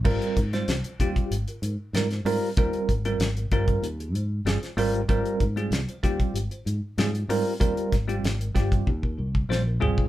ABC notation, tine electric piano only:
X:1
M:4/4
L:1/16
Q:1/4=95
K:Ab
V:1 name="Tine electric piano"
[G,CFB]2 z [G,CFc] z [Fc] [G,CFG]2 z [FB] [FB] z [G,CFB] [Fc] [G,CFB] z | [G,CFB]2 z [G,CFB] z [FB] [G,CFB]2 z [FA] [Fc] z [G,CFA] [Fc] [G,CFB] z | [G,CFB]2 z [G,CFA] z [Fc] [G,CFG]2 z [Fc] [FA] z [G,CFA] [FG] [G,CFB] z | [G,CFB]2 z [G,CFG] z [FB] [G,CFG]2 z [FB] [FB] z [G,CFc] [FB] [G,CFA] z |]